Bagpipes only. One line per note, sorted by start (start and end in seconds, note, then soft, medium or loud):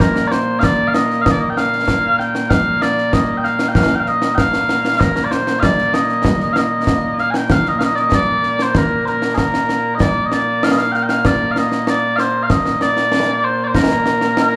0.00 14.56 A#2 medium
0.00 14.56 A#3 medium
0.00 0.28 A#4 medium
0.28 0.32 D5 medium
0.32 0.59 C5 medium
0.59 0.64 F5 medium
0.64 0.88 D5 medium
0.88 0.94 F5 medium
0.94 1.22 D#5 loud
1.22 1.31 D#5 medium
1.22 1.25 F5 medium
1.31 1.39 D5 medium
1.39 1.50 D#5 medium
1.50 1.57 G5 medium
1.57 2.19 F5 loud
2.19 2.50 G5 medium
2.50 2.82 F5 medium
2.82 3.13 D5 medium
3.13 3.37 D#5 medium
3.37 3.44 G5 medium
3.44 3.69 F5 medium
3.69 3.76 G5 medium
3.76 3.95 F5 medium
3.95 4.00 G5 medium
4.00 4.08 F5 medium
4.08 4.35 D#5 loud
4.35 5.00 F5 loud
4.35 4.38 G5 loud
5.00 5.24 A#4 medium
5.24 5.31 D5 medium
5.31 5.60 C5 medium
5.60 5.93 D5 medium
5.60 5.63 F5 medium
5.93 6.53 D#5 medium
6.53 6.57 F5 medium
6.57 7.20 D#5 medium
7.20 7.31 F5 medium
7.31 7.36 G#5 medium
7.36 7.52 G5 loud
7.52 7.68 F5 medium
7.68 7.79 D#5 medium
7.79 7.84 F5 medium
7.84 7.95 D#5 medium
7.95 7.99 D5 medium
7.99 8.14 D#5 loud
8.14 8.63 D5 loud
8.63 8.77 C5 medium
8.77 9.05 A#4 medium
9.05 9.35 A#4 medium
9.05 9.08 C5 soft
9.35 9.39 G#4 medium
9.39 9.95 A#4 medium
9.95 10.01 D#5 medium
10.01 10.26 D5 medium
10.26 10.33 D#5 medium
10.33 10.64 D5 medium
10.64 10.71 F5 medium
10.71 10.78 D#5 medium
10.78 10.92 F5 medium
10.92 11.03 F5 medium
10.92 10.95 G5 medium
11.03 11.10 G5 medium
11.10 11.26 F5 medium
11.26 11.51 D5 medium
11.51 11.58 F5 medium
11.58 11.89 D#5 medium
11.89 12.16 D5 medium
12.16 12.43 C5 medium
12.16 12.20 F5 medium
12.43 12.50 F5 medium
12.50 12.82 D#5 medium
12.82 13.44 D5 loud
13.44 13.64 C5 medium
13.64 13.75 C5 medium
13.64 13.68 D5 medium
13.75 14.56 A#4 medium